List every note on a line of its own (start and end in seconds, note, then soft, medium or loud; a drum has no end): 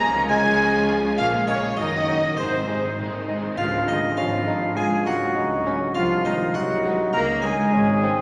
0.00 1.19 C#2 medium
0.00 1.16 C#2 medium
0.00 1.16 C#3 loud
0.00 0.14 F3 medium
0.00 0.28 A#3 loud
0.00 0.14 C#4 medium
0.00 0.14 G#4 medium
0.00 0.12 A#5 medium
0.00 0.27 A#5 loud
0.00 0.28 A#5 loud
0.15 0.30 G#3 medium
0.15 0.30 F4 medium
0.15 0.30 C#5 medium
0.29 0.45 F3 medium
0.29 1.16 G#3 loud
0.29 0.40 G#3 medium
0.29 0.45 C#4 medium
0.29 0.40 F4 medium
0.29 0.44 G#4 medium
0.29 0.88 G#5 loud
0.29 0.89 G#5 loud
0.29 1.14 G#5 loud
0.29 1.16 G#5 loud
0.44 0.59 G#3 medium
0.44 0.59 F4 medium
0.44 0.59 C#5 medium
0.59 0.73 F3 medium
0.59 0.73 C#4 medium
0.59 0.73 G#4 medium
0.74 0.89 G#3 medium
0.74 0.88 F4 medium
0.74 0.89 F4 medium
0.74 0.88 C#5 medium
0.88 1.03 F3 medium
0.88 0.99 G#3 medium
0.88 1.03 C#4 medium
0.88 0.99 F4 medium
0.88 1.03 G#4 medium
1.03 1.18 G#3 medium
1.03 1.18 F4 medium
1.03 1.18 C#5 medium
1.18 1.77 A#1 medium
1.18 1.60 A#1 medium
1.18 1.78 A#2 medium
1.18 1.32 F3 medium
1.18 1.32 A#3 medium
1.18 1.32 C#4 medium
1.18 1.32 G#4 medium
1.18 1.32 A#4 medium
1.18 1.26 F5 loud
1.18 1.45 F5 medium
1.18 1.45 F5 loud
1.18 1.46 F5 loud
1.33 1.48 G#3 medium
1.33 1.47 A#3 medium
1.33 1.48 F4 medium
1.33 1.48 G#4 medium
1.47 1.77 C#3 medium
1.47 1.58 G#3 medium
1.47 1.61 A#3 medium
1.47 1.62 C#4 medium
1.47 1.58 C#4 medium
1.47 1.63 G#4 medium
1.47 1.63 A#4 medium
1.47 1.75 C#5 medium
1.47 1.77 C#5 loud
1.47 1.61 C#5 medium
1.47 1.55 C#5 medium
1.62 1.77 G#3 medium
1.62 1.77 A#3 medium
1.62 1.78 F4 medium
1.62 1.78 G#4 medium
1.76 2.39 F#1 medium
1.76 2.36 F#1 medium
1.76 2.37 F#2 medium
1.76 2.37 D#3 medium
1.76 1.91 F#3 medium
1.76 1.91 D#4 medium
1.76 1.92 D#4 medium
1.76 1.92 A#4 medium
1.76 2.33 D#5 medium
1.76 2.39 D#5 medium
1.76 2.37 D#5 medium
1.76 2.38 D#5 loud
1.92 2.07 D#3 medium
1.92 2.07 A#3 medium
1.92 2.08 F#4 medium
1.92 2.08 D#5 medium
2.07 2.22 F#3 medium
2.07 2.19 F#3 medium
2.07 2.18 D#4 medium
2.07 2.22 D#4 medium
2.07 2.23 D#4 medium
2.07 2.23 A#4 medium
2.22 2.37 D#3 medium
2.22 2.37 A#3 medium
2.22 2.38 F#4 medium
2.22 2.38 D#5 medium
2.37 3.38 G#1 medium
2.37 2.92 G#2 medium
2.37 2.98 C3 medium
2.37 2.51 G#3 medium
2.37 2.52 C4 medium
2.37 2.51 D#4 medium
2.37 2.52 G#4 medium
2.37 2.93 C5 medium
2.37 2.98 C5 medium
2.37 2.97 C5 medium
2.52 2.67 D#3 medium
2.52 2.67 C4 medium
2.52 2.68 D#4 medium
2.52 2.68 C5 medium
2.67 2.82 G#3 medium
2.67 2.79 G#3 medium
2.67 2.83 C4 medium
2.67 2.82 D#4 medium
2.67 2.78 D#4 medium
2.67 2.83 G#4 medium
2.82 2.98 D#3 medium
2.82 2.98 C4 medium
2.82 2.99 D#4 medium
2.82 2.99 C5 medium
2.97 3.06 A#2 medium
2.97 3.12 G#3 medium
2.97 3.13 C4 medium
2.97 3.12 D#4 medium
2.97 3.13 G#4 medium
3.12 3.28 D#3 medium
3.12 3.28 C4 medium
3.12 3.29 D#4 medium
3.12 3.29 C5 medium
3.27 3.57 G#2 medium
3.27 3.42 G#3 medium
3.27 3.39 G#3 medium
3.27 3.43 C4 medium
3.27 3.43 D#4 medium
3.27 3.39 D#4 medium
3.27 3.44 G#4 medium
3.42 3.58 D#3 medium
3.42 3.58 C4 medium
3.42 3.58 D#4 medium
3.42 3.58 C5 medium
3.57 4.07 C#2 medium
3.57 3.85 F3 medium
3.57 3.71 F3 medium
3.57 3.85 F4 medium
3.57 4.13 F4 medium
3.57 3.85 F5 loud
3.57 3.90 F5 medium
3.57 tam-tam medium
3.87 4.17 D#3 medium
3.87 3.95 G#3 medium
3.87 3.96 C#4 medium
3.87 4.00 D#4 medium
3.87 3.96 F4 medium
3.87 4.17 D#5 medium
3.87 4.16 D#5 loud
4.17 4.67 G#1 medium
4.17 4.75 F3 medium
4.17 4.31 C#4 medium
4.17 4.78 F4 medium
4.17 4.72 F5 medium
4.17 4.78 F5 medium
4.46 4.54 G#3 medium
4.46 4.56 C#4 medium
4.46 4.61 D#4 medium
4.46 4.54 F4 medium
4.76 5.26 C#2 medium
4.76 4.84 G#3 medium
4.76 5.06 G#3 medium
4.76 5.37 F4 medium
4.76 5.05 G#4 loud
4.76 5.05 G#5 loud
4.76 5.04 G#5 loud
5.05 5.93 F#3 medium
5.05 5.95 F#3 medium
5.05 5.13 A#3 medium
5.05 5.13 D#4 medium
5.05 5.14 D#4 medium
5.05 5.93 F#4 medium
5.05 5.93 F#5 medium
5.05 5.91 F#5 medium
5.36 5.85 C#2 medium
5.36 5.65 D#4 medium
5.65 5.73 A#3 medium
5.65 5.79 C#4 medium
5.65 5.73 D#4 medium
5.65 5.74 D#4 medium
5.94 6.44 C2 medium
5.94 6.24 F3 medium
5.94 6.03 F3 loud
5.94 6.24 F4 medium
5.94 6.57 F4 medium
5.94 6.22 F5 loud
5.94 6.02 F5 medium
6.24 6.54 D#3 medium
6.24 6.33 D#3 medium
6.24 6.33 G#3 medium
6.24 6.33 D#4 medium
6.24 6.56 D#4 medium
6.24 6.52 D#5 medium
6.24 6.53 D#5 medium
6.54 7.03 C2 medium
6.54 7.04 C2 medium
6.54 7.13 F#3 loud
6.54 7.12 F#3 medium
6.54 7.75 D#4 medium
6.54 7.13 F#4 medium
6.54 7.12 F#5 medium
6.54 7.09 F#5 medium
6.84 6.92 G#3 medium
6.84 6.93 D#4 medium
7.13 7.63 C#2 medium
7.13 7.43 A#3 loud
7.13 7.27 A#3 loud
7.13 7.27 A#4 loud
7.13 7.41 A#5 loud
7.13 7.20 A#5 loud
7.42 7.51 G#3 medium
7.42 8.21 G#3 medium
7.42 7.51 C#4 medium
7.42 7.51 F4 medium
7.42 8.21 G#4 medium
7.42 8.21 G#5 loud
7.42 8.21 G#5 medium
7.72 8.21 G#1 medium
7.72 8.21 G#1 loud
7.72 8.02 C#4 medium
8.02 8.10 G#3 medium
8.02 8.21 C4 medium
8.02 8.11 C#4 medium
8.02 8.11 F4 medium